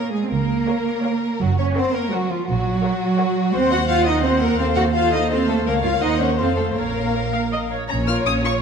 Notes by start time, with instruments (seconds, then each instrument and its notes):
Already playing: cello section A#3, violin section A#4 F5, viola section A#4 C#5
0.13 cello section G#3, violin section G#4
0.24 cello section C4
0.31 double bass section C#2, cello section A#3, violin section A#4
0.67 viola section A#4 C#5, violin section F5
1.03 viola section A#4 C#5, violin section F5
1.40 double bass section F#1, cello section F#3, violin section F#4
1.58 cello section C#4, violin section C#5
1.76 cello section C4, viola section A#4 C#5, violin section C5 F#5
1.94 cello section A#3, violin section A#4
2.12 cello section F#3, violin section F#4 F#5, viola section A#4 C#5
2.30 cello section F3, violin section F4
2.48 double bass section A#1, cello section F#3, violin section F#4
2.83 viola section A#4 C#5, violin section F#5
3.19 viola section A#4 C#5, violin section F#5
3.54 double bass section D#2, cello section C4, viola section C5, violin section C5 F#5
3.71 cello section F#4, violin section F#5
3.88 cello section F4, violin section F5
4.05 cello section D#4, violin section D#5
4.23 cello section C4, violin section C5 F#5, viola section C5
4.41 cello section A#3, violin section A#4, viola section A#4
4.58 double bass section D#2, cello section C4, viola section A4 C5, violin section C5 F5
4.76 cello section F#4, violin section F#5
4.94 cello section F4, viola section A4 C5, violin section F5
5.12 cello section D#4, violin section D#5
5.31 cello section C4, viola section A4 C5, violin section C5 F5
5.48 cello section A3, violin section A4
5.66 double bass section C#2, cello section A#3, violin section A#4 F5, viola section A#4 C#5
5.84 cello section F4, violin section F5
6.02 double bass section D#2, cello section D#4, viola section A#4 C5, violin section D#5 F#5
6.20 cello section C#4, violin section C#5
6.38 double bass section F2, cello section C4, viola section A4 C5, violin section C5 F5
6.57 cello section A3, violin section A4
6.76 double bass section A#1, cello section A#3, violin section A#4 F5, viola section A#4 C#5
7.15 viola section A#4
7.33 viola section F5
7.52 viola section D#5
7.71 viola section C#5
7.90 double bass section A#1, cello section A#2, violin section C#4 C#5 A#5, viola section C#5
8.08 violin section F4 A#4 F6
8.26 double bass section A#1, cello section A#2, violin section C#4 C#5 D#6
8.44 violin section F4 A#4 C#6